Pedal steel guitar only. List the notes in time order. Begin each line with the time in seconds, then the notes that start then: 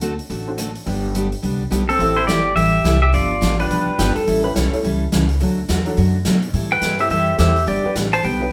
1.89 C4 A4
2.17 E4 C5
2.27 G4 D5
2.56 G4 E5
3.02 G4 E5
3.14 F4 D5
3.60 D4 B4
6.72 B4 G5
7.00 G4 E5
7.11 G4 E5
7.39 G4 E5
7.68 G4 D5
8.13 C5 A5
8.24 B4 G5